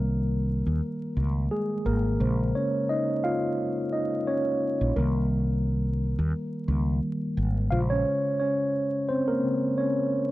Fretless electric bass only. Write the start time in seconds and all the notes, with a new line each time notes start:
Already playing: C2
0.66 D#2
1.17 C#2
1.86 G#1
2.20 A#1
4.81 A#1
4.96 C2
6.19 D#2
6.68 C#2
7.37 G#1
7.72 A#1